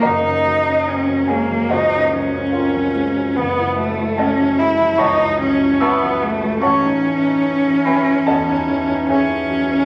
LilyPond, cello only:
\new Staff \with { instrumentName = "Cello" } { \time 4/4 \key ges \major \tempo 4 = 73 ees'4 des'8 bes8 ees'8 des'4. | ces'8 a8 des'8 fes'8 ees'8 des'8 ces'8 a8 | cis'2. cis'4 | }